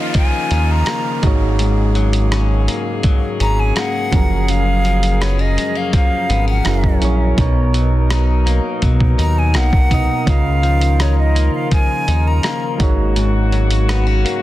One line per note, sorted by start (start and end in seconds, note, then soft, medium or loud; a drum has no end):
0.00 1.25 C#3 medium
0.00 1.31 C#3 medium
0.00 1.21 D#3 medium
0.00 0.14 F3 medium
0.00 0.87 A#3 medium
0.00 4.09 A#3 medium
0.00 1.25 C#4 medium
0.00 0.50 D#4 medium
0.00 1.21 F4 medium
0.00 1.26 F4 medium
0.00 1.25 A#4 medium
0.00 1.26 D#5 medium
0.00 0.16 F5 medium
0.00 downlifter medium
0.14 1.31 F3 medium
0.14 0.73 G#5 medium
0.14 kick medium
0.14 closed hi-hat medium
0.51 0.83 D#2 medium
0.51 2.31 D#4 medium
0.51 closed hi-hat medium
0.71 1.25 A#5 medium
0.86 1.63 A#3 medium
0.86 cross-stick loud
0.86 closed hi-hat medium
1.22 2.68 G#1 loud
1.22 1.58 G#2 medium
1.22 4.10 C#3 medium
1.22 2.40 G#3 medium
1.22 2.40 D#4 medium
1.22 2.41 F#4 medium
1.22 6.61 G#4 medium
1.22 2.41 A#4 medium
1.22 kick loud
1.22 closed hi-hat medium
1.27 2.42 C#5 medium
1.59 4.12 G#2 medium
1.59 closed hi-hat medium
1.95 3.04 F#3 medium
1.95 closed hi-hat soft
2.13 closed hi-hat medium
2.32 3.40 C#4 medium
2.32 cross-stick medium
2.32 closed hi-hat medium
2.68 3.76 A#3 medium
2.68 closed hi-hat medium
3.03 4.84 F#3 medium
3.03 kick medium
3.03 closed hi-hat medium
3.40 3.73 G#1 medium
3.40 5.21 C#4 medium
3.40 3.61 A#5 loud
3.40 closed hi-hat medium
3.60 3.77 G#5 medium
3.76 5.24 A#3 medium
3.76 4.52 F#5 loud
3.76 cross-stick loud
3.76 closed hi-hat medium
4.11 5.58 F#1 loud
4.11 4.47 F#2 medium
4.11 6.63 C#3 medium
4.11 5.30 F3 medium
4.11 5.29 F#3 medium
4.11 5.29 C#4 medium
4.11 5.30 G#4 medium
4.11 12.76 A#4 medium
4.11 kick loud
4.11 closed hi-hat medium
4.16 5.31 A#4 medium
4.48 6.65 F#2 medium
4.48 5.24 F5 loud
4.48 closed hi-hat medium
4.85 5.92 F3 medium
4.85 closed hi-hat soft
5.03 closed hi-hat medium
5.21 5.39 B3 medium
5.21 5.42 C#5 medium
5.21 cross-stick medium
5.21 closed hi-hat medium
5.39 6.29 C#4 medium
5.39 5.79 D#5 medium
5.57 5.75 G#3 medium
5.57 closed hi-hat medium
5.75 6.73 A#3 medium
5.75 5.94 F5 medium
5.93 6.73 F3 medium
5.93 6.45 F5 medium
5.93 kick medium
5.93 closed hi-hat medium
6.29 6.62 G#1 medium
6.29 6.48 B3 medium
6.29 closed hi-hat medium
6.48 6.73 C#4 medium
6.48 6.99 F#5 medium
6.64 6.98 F#1 loud
6.64 7.38 F#2 medium
6.64 7.37 E3 medium
6.64 6.94 F#3 medium
6.64 6.95 C#4 medium
6.64 6.95 E4 medium
6.64 7.37 F#4 medium
6.64 6.96 G#4 medium
6.64 cross-stick loud
6.64 closed hi-hat medium
6.69 6.96 A#4 medium
6.84 kick medium
7.00 7.34 A#1 medium
7.00 7.30 F#3 medium
7.00 7.31 C#4 medium
7.00 7.45 C#4 medium
7.00 7.31 E4 medium
7.00 7.32 G#4 medium
7.00 closed hi-hat medium
7.05 7.32 C#5 medium
7.37 8.60 B1 loud
7.37 8.54 B2 medium
7.37 10.24 B2 medium
7.37 10.27 B2 medium
7.37 8.54 B3 medium
7.37 10.24 D#4 medium
7.37 8.55 D#4 medium
7.37 8.56 A#4 medium
7.37 kick loud
7.37 closed hi-hat medium
7.41 8.56 C#5 medium
7.74 8.81 F#3 medium
7.74 closed hi-hat medium
8.10 9.18 D#4 medium
8.10 cross-stick medium
8.10 closed hi-hat medium
8.46 9.54 A#3 medium
8.46 closed hi-hat medium
8.82 9.15 B2 loud
8.82 10.34 F#3 medium
8.82 kick medium
8.82 closed hi-hat medium
9.00 kick medium
9.18 9.56 D#2 medium
9.18 9.91 D#4 medium
9.18 9.40 A#5 loud
9.18 closed hi-hat medium
9.38 9.58 G#5 medium
9.54 9.87 B1 loud
9.54 11.35 A#3 medium
9.54 10.31 F#5 loud
9.54 cross-stick loud
9.54 closed hi-hat medium
9.73 kick medium
9.89 10.07 C2 medium
9.89 10.19 B2 medium
9.89 10.20 B3 medium
9.89 10.66 D#4 medium
9.89 10.20 D#4 medium
9.89 10.21 A#4 medium
9.89 kick medium
9.89 closed hi-hat medium
9.94 10.22 D#5 medium
10.25 11.50 C#2 loud
10.25 11.43 C#3 medium
10.25 12.87 C#3 medium
10.25 12.77 D#3 medium
10.25 11.44 C#4 medium
10.25 12.77 F4 medium
10.25 11.44 F4 medium
10.25 11.45 A#4 medium
10.25 kick loud
10.25 closed hi-hat medium
10.29 11.45 D#5 medium
10.29 11.03 F5 loud
10.63 11.71 F3 medium
10.63 closed hi-hat soft
10.81 closed hi-hat medium
10.99 12.08 D#4 medium
10.99 11.18 C#5 medium
10.99 cross-stick medium
10.99 closed hi-hat medium
11.19 11.52 D#5 medium
11.35 12.44 A#3 medium
11.35 closed hi-hat medium
11.55 11.71 F5 medium
11.71 12.87 F3 medium
11.71 12.29 G#5 loud
11.71 kick medium
11.71 closed hi-hat medium
12.08 12.40 D#2 medium
12.08 13.88 D#4 medium
12.08 closed hi-hat medium
12.28 12.81 A#5 medium
12.43 13.20 A#3 medium
12.43 cross-stick loud
12.43 closed hi-hat medium
12.78 14.25 G#1 loud
12.78 13.15 G#2 medium
12.78 14.42 C#3 medium
12.78 13.96 G#3 medium
12.78 14.42 A#3 medium
12.78 13.96 D#4 medium
12.78 14.42 F#4 medium
12.78 13.97 F#4 medium
12.78 13.98 A#4 medium
12.78 kick loud
12.78 closed hi-hat medium
12.83 13.98 C#5 medium
13.16 14.42 G#2 medium
13.16 closed hi-hat medium
13.52 14.42 F#3 medium
13.52 closed hi-hat soft
13.71 closed hi-hat medium
13.89 14.07 B3 medium
13.89 cross-stick medium
13.89 closed hi-hat medium
14.07 14.42 C#4 medium
14.25 14.42 A#3 medium
14.25 closed hi-hat medium